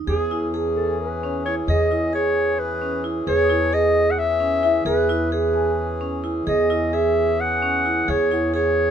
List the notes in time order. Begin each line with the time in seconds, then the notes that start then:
0.06 E2 E3 C#4 G#4
0.31 E4
0.53 E4 G#4
0.76 A4
1.00 B4
1.23 C#4 C#5
1.46 E4 C#5
1.68 E2 G#4 D#5
1.91 E4
2.13 G#4 C#5
2.59 B4
2.82 C#4
3.04 E4
3.27 E2 G#4 B4 C#5
3.43 D#6
3.50 E4
3.61 E4
3.73 G#4 D#5
4.11 F#5
4.19 E5
4.40 C#4
4.63 E4 E5
4.85 E2 G#4 B4
5.09 E4
5.32 G#4 B4
5.54 E4 G#5
6.01 C#4
6.24 E4
6.47 E2 G#4 D#5
6.70 E4
6.93 G#4 E5
7.40 F#5
7.62 C#4
7.85 E4
8.08 E2 G#4 C#5
8.31 E4 F#5
8.54 G#4 C#5